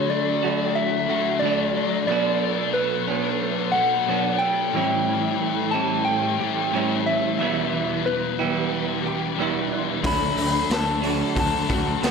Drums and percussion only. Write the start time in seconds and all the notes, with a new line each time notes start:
10.04 kick, open hi-hat
10.37 open hi-hat
10.70 snare, open hi-hat
11.03 open hi-hat
11.36 kick, open hi-hat
11.70 kick, open hi-hat
12.03 snare, open hi-hat